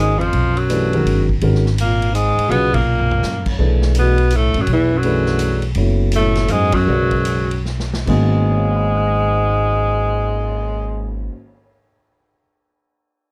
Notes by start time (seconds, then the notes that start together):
Already playing: G#1 G#2 D#3 G#3 C#4 F#4 A#4
0.18 F2 F3, ride
0.33 B1, ride
0.54 F#2 F#3, ride
0.69 E3 A3 D4 G4 B4, hi-hat pedal, ride
0.93 D#3 G#3 C#4 F#4 A#4, ride
1.05 G1, ride
1.29 kick
1.41 G#1 D#3 G#3 C#4 F#4 A#4, ride
1.55 snare
1.66 snare
1.78 A#2 A#3, hi-hat pedal, ride
2.02 ride
2.12 G#2 G#3, hi-hat pedal, ride
2.38 muted upright bass stroke, ride
2.48 B1 B2 C#3 F#3 B3 F4 G#4, ride
2.71 A#2 A#3, kick, ride
2.99 floor tom
3.11 floor tom
3.23 F#2, snare, hi-hat pedal
3.46 kick, crash
3.58 B1 E3 A3 D4 G#4 B4
3.82 snare
3.95 B2, hi-hat pedal, ride
3.99 B3
4.18 ride
4.30 hi-hat pedal, ride
4.35 A2 A3
4.54 A1 F#2, ride
4.61 F#3
4.67 B1 E2, ride
4.73 E3
4.93 F#2
4.97 F#3
5.03 E3 A3 D4 G#4 B4, ride
5.26 snare
5.39 hi-hat pedal, ride
5.62 ride
5.75 F#1 F#3 B3 E4 A4 C#5, ride
6.12 A2, hi-hat pedal, ride
6.16 A3
6.35 snare, ride
6.48 F#2 G#2 G#3, hi-hat pedal, ride
6.72 F#2 F#3, kick, ride
6.87 B1 C#3 G#3 F#4 B4 D5
7.11 kick, ride
7.25 hi-hat pedal, ride
7.51 ride
7.65 snare
7.80 snare
7.94 snare
8.06 G#1 G#2 D#3 G#3 A#3 B3 C#4 F#4, kick, crash
8.35 cymbal swell
8.50 C#5
8.57 F5
8.66 G#5
8.75 B5
8.85 D#6
8.96 F#6
9.07 A#6
9.19 C#7